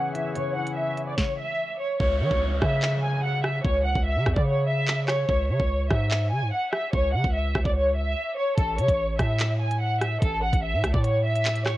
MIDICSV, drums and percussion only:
0, 0, Header, 1, 2, 480
1, 0, Start_track
1, 0, Key_signature, 4, "minor"
1, 0, Tempo, 410959
1, 417, Time_signature, 4, 2, 24, 8
1, 13751, End_track
2, 0, Start_track
2, 0, Title_t, "Drums"
2, 177, Note_on_c, 9, 42, 87
2, 294, Note_off_c, 9, 42, 0
2, 417, Note_on_c, 9, 42, 85
2, 534, Note_off_c, 9, 42, 0
2, 782, Note_on_c, 9, 42, 71
2, 899, Note_off_c, 9, 42, 0
2, 1139, Note_on_c, 9, 42, 68
2, 1256, Note_off_c, 9, 42, 0
2, 1376, Note_on_c, 9, 38, 91
2, 1377, Note_on_c, 9, 36, 106
2, 1493, Note_off_c, 9, 36, 0
2, 1493, Note_off_c, 9, 38, 0
2, 2337, Note_on_c, 9, 36, 110
2, 2453, Note_off_c, 9, 36, 0
2, 2697, Note_on_c, 9, 36, 90
2, 2814, Note_off_c, 9, 36, 0
2, 3057, Note_on_c, 9, 37, 98
2, 3058, Note_on_c, 9, 36, 90
2, 3174, Note_off_c, 9, 37, 0
2, 3175, Note_off_c, 9, 36, 0
2, 3297, Note_on_c, 9, 39, 116
2, 3413, Note_off_c, 9, 39, 0
2, 4017, Note_on_c, 9, 37, 101
2, 4134, Note_off_c, 9, 37, 0
2, 4257, Note_on_c, 9, 36, 112
2, 4374, Note_off_c, 9, 36, 0
2, 4618, Note_on_c, 9, 36, 91
2, 4734, Note_off_c, 9, 36, 0
2, 4978, Note_on_c, 9, 36, 88
2, 4978, Note_on_c, 9, 37, 98
2, 5095, Note_off_c, 9, 36, 0
2, 5095, Note_off_c, 9, 37, 0
2, 5097, Note_on_c, 9, 36, 100
2, 5214, Note_off_c, 9, 36, 0
2, 5697, Note_on_c, 9, 39, 118
2, 5814, Note_off_c, 9, 39, 0
2, 5937, Note_on_c, 9, 37, 101
2, 5937, Note_on_c, 9, 39, 70
2, 6054, Note_off_c, 9, 37, 0
2, 6054, Note_off_c, 9, 39, 0
2, 6177, Note_on_c, 9, 36, 109
2, 6294, Note_off_c, 9, 36, 0
2, 6537, Note_on_c, 9, 36, 93
2, 6654, Note_off_c, 9, 36, 0
2, 6897, Note_on_c, 9, 37, 97
2, 6898, Note_on_c, 9, 36, 92
2, 7014, Note_off_c, 9, 37, 0
2, 7015, Note_off_c, 9, 36, 0
2, 7136, Note_on_c, 9, 39, 112
2, 7253, Note_off_c, 9, 39, 0
2, 7856, Note_on_c, 9, 37, 101
2, 7973, Note_off_c, 9, 37, 0
2, 8096, Note_on_c, 9, 36, 108
2, 8213, Note_off_c, 9, 36, 0
2, 8457, Note_on_c, 9, 36, 90
2, 8574, Note_off_c, 9, 36, 0
2, 8817, Note_on_c, 9, 37, 97
2, 8818, Note_on_c, 9, 36, 93
2, 8934, Note_off_c, 9, 37, 0
2, 8935, Note_off_c, 9, 36, 0
2, 8936, Note_on_c, 9, 36, 100
2, 9053, Note_off_c, 9, 36, 0
2, 10017, Note_on_c, 9, 36, 107
2, 10017, Note_on_c, 9, 42, 89
2, 10133, Note_off_c, 9, 36, 0
2, 10134, Note_off_c, 9, 42, 0
2, 10261, Note_on_c, 9, 42, 85
2, 10377, Note_on_c, 9, 36, 90
2, 10378, Note_off_c, 9, 42, 0
2, 10383, Note_on_c, 9, 42, 70
2, 10494, Note_off_c, 9, 36, 0
2, 10500, Note_off_c, 9, 42, 0
2, 10737, Note_on_c, 9, 37, 100
2, 10738, Note_on_c, 9, 36, 91
2, 10739, Note_on_c, 9, 42, 73
2, 10854, Note_off_c, 9, 37, 0
2, 10855, Note_off_c, 9, 36, 0
2, 10856, Note_off_c, 9, 42, 0
2, 10976, Note_on_c, 9, 39, 113
2, 10976, Note_on_c, 9, 42, 91
2, 11093, Note_off_c, 9, 39, 0
2, 11093, Note_off_c, 9, 42, 0
2, 11342, Note_on_c, 9, 42, 80
2, 11459, Note_off_c, 9, 42, 0
2, 11697, Note_on_c, 9, 37, 101
2, 11698, Note_on_c, 9, 42, 91
2, 11813, Note_off_c, 9, 37, 0
2, 11814, Note_off_c, 9, 42, 0
2, 11937, Note_on_c, 9, 36, 111
2, 11937, Note_on_c, 9, 42, 86
2, 12053, Note_off_c, 9, 36, 0
2, 12054, Note_off_c, 9, 42, 0
2, 12297, Note_on_c, 9, 36, 91
2, 12302, Note_on_c, 9, 42, 74
2, 12414, Note_off_c, 9, 36, 0
2, 12419, Note_off_c, 9, 42, 0
2, 12657, Note_on_c, 9, 37, 97
2, 12658, Note_on_c, 9, 36, 91
2, 12659, Note_on_c, 9, 42, 74
2, 12774, Note_off_c, 9, 37, 0
2, 12775, Note_off_c, 9, 36, 0
2, 12776, Note_off_c, 9, 42, 0
2, 12776, Note_on_c, 9, 36, 100
2, 12893, Note_off_c, 9, 36, 0
2, 12896, Note_on_c, 9, 42, 81
2, 13013, Note_off_c, 9, 42, 0
2, 13263, Note_on_c, 9, 42, 77
2, 13377, Note_on_c, 9, 39, 120
2, 13379, Note_off_c, 9, 42, 0
2, 13379, Note_on_c, 9, 42, 82
2, 13494, Note_off_c, 9, 39, 0
2, 13496, Note_off_c, 9, 42, 0
2, 13497, Note_on_c, 9, 42, 72
2, 13614, Note_off_c, 9, 42, 0
2, 13616, Note_on_c, 9, 37, 100
2, 13616, Note_on_c, 9, 39, 72
2, 13733, Note_off_c, 9, 37, 0
2, 13733, Note_off_c, 9, 39, 0
2, 13751, End_track
0, 0, End_of_file